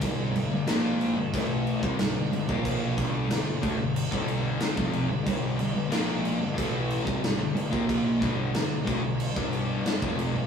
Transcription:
<<
  \new Staff \with { instrumentName = "Distorted electric guitar" } { \clef bass \time 4/4 \key g \dorian \tempo 4 = 92 <g, d g>8 <g, d>16 <g, d>16 <bes, f bes>8. <g, d>16 <a, e a>8. <c g>16 <g, d>16 <g, d>16 <g, d>16 <bes, f bes>16~ | <bes, f bes>8 <g, d g>8 <g, d>8 <d a>16 <g, d>8 <g, d g>4 <f, c f>8 <g, d>16 | <g, d g>8 <g, d>16 <g, d>16 <bes, f bes>8. <g, d>16 <a, e a>8. <c g>16 <g, d>16 <g, d>16 <g, d>16 <bes, f bes>16~ | <bes, f bes>8 <g, d g>8 <g, d>8 <d a>16 <g, d>8 <g, d g>4 <f, c f>8 <g, d>16 | }
  \new Staff \with { instrumentName = "Distorted electric guitar" } { \clef bass \time 4/4 \key g \dorian <g, d g>8 <g, d>16 <g, d>16 <bes, f bes>8. <g, d>16 <a, e a>8. <c g>16 <g, d>16 <g, d>16 <g, d>16 <bes, f bes>16~ | <bes, f bes>8 <g, d g>8 <g, d>8 <d a>16 <g, d>8 <g, d g>4 <f, c f>8 <g, d>16 | <g, d g>8 <g, d>16 <g, d>16 <bes, f bes>8. <g, d>16 <a, e a>8. <c g>16 <g, d>16 <g, d>16 <g, d>16 <bes, f bes>16~ | <bes, f bes>8 <g, d g>8 <g, d>8 <d a>16 <g, d>8 <g, d g>4 <f, c f>8 <g, d>16 | }
  \new Staff \with { instrumentName = "Picked electric bass" } { \clef bass \time 4/4 \key g \dorian g,,8 g,,16 g,,16 bes,,8. g,,16 a,,8. c,16 g,,16 g,,16 g,,16 bes,,16~ | bes,,8 g,,8 g,,8 d,16 g,,8 g,,4 f,,8 g,,16 | g,,8 g,,16 g,,16 bes,,8. g,,16 a,,8. c,16 g,,16 g,,16 g,,16 bes,,16~ | bes,,8 g,,8 g,,8 d,16 g,,8 g,,4 f,,8 g,,16 | }
  \new DrumStaff \with { instrumentName = "Drums" } \drummode { \time 4/4 <cymc bd>8 cymc8 <cymc sn>8 cymc8 <cymc bd>8 cymc16 bd16 <cymc sn>8 cymc16 bd16 | <cymc bd>8 <cymc bd>8 <cymc sn>8 <cymc bd>8 cymc16 bd16 cymc8 <cymc sn>16 bd16 cymc8 | <cymc bd>8 cymc8 <cymc sn>8 cymc8 <cymc bd>8 cymc16 bd16 <cymc sn>8 cymc16 bd16 | <cymc bd>8 <cymc bd>8 <cymc sn>8 <cymc bd>8 cymc16 bd16 cymc8 <cymc sn>16 bd16 cymc8 | }
>>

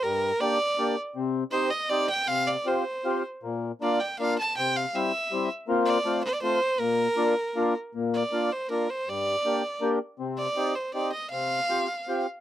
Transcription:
<<
  \new Staff \with { instrumentName = "Violin" } { \time 3/4 \key bes \major \tempo 4 = 159 bes'4 d''4. r8 | r4 c''8 ees''8 d''8 g''8 | f''8 d''8 c''4. r8 | r4 d''8 g''8 f''8 a''8 |
g''8 f''8 e''4. r8 | r8 d''4 c''16 d''16 c''4 | bes'2~ bes'8 r8 | r8 d''4 c''8 bes'8 c''8 |
d''2 r4 | r8 d''4 c''8 d''8 ees''8 | f''2~ f''8 r8 | }
  \new Staff \with { instrumentName = "Accordion" } { \time 3/4 \key bes \major g,4 <bes d' g'>8 r8 <bes d' g'>8 r8 | c4 <c' ees' g'>8 r8 <c' ees' g'>8 r8 | c4 <c' f' g'>8 r8 <c' f' g'>8 r8 | bes,4 <bes d' f'>8 r8 <bes d' f'>8 r8 |
c4 <g c' e'>8 r8 <g c' e'>8 r8 | <bes c' f'>4 <a c' f'>8 r8 <a c' f'>8 r8 | bes,4 <bes d' f'>8 r8 <bes d' f'>8 r8 | bes,4 <bes d' f'>8 r8 <bes d' f'>8 r8 |
g,4 <bes d' g'>8 r8 <bes d' g'>8 r8 | c4 <c' ees' g'>8 r8 <c' ees' g'>8 r8 | c4 <c' f' g'>8 r8 <c' f' g'>8 r8 | }
>>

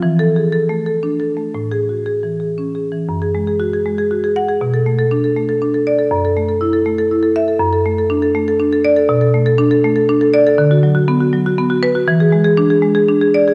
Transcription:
\new Staff \with { instrumentName = "Marimba" } { \time 3/4 \key a \major \tempo 4 = 120 << { \tuplet 3/2 { r8 a'4 } r2 | \tuplet 3/2 { r8 gis'4 } r2 | \key fis \minor r2 r8 fis''8 | r2 r8 d''8 |
r2 r8 e''8 | r2 r8 d''8 | \key d \lydian r2 r8 d''8 | r2 r8 b'8 |
r2 r8 d''8 | } \\ { \tuplet 3/2 { e4 gis'8 a'8 a8 a'8 d'8 a'8 a8 } | \tuplet 3/2 { a,4 fis'8 gis'8 e8 gis'8 cis'8 gis'8 e8 } | fis,16 gis'16 gis16 gis'16 fis'16 gis'16 gis16 gis'16 fis'16 gis'8 gis'16 | b,16 a'16 a16 a'16 d'16 a'16 a16 a'16 d'16 a'8 a'16 |
fis,16 a'16 a16 a'16 e'16 a'16 a16 a'16 e'16 a'8 a'16 | fis,16 a'16 a16 a'16 d'16 a'16 a16 a'16 d'16 a'8 a'16 | b,16 a'16 a16 a'16 d'16 a'16 a16 a'16 d'16 a'8 a'16 | d16 fis'16 fis16 fis'16 b16 fis'16 fis16 fis'16 b16 fis'8 fis'16 |
e16 gis'16 gis16 gis'16 d'16 gis'16 gis16 gis'16 d'16 gis'8 gis'16 | } >> }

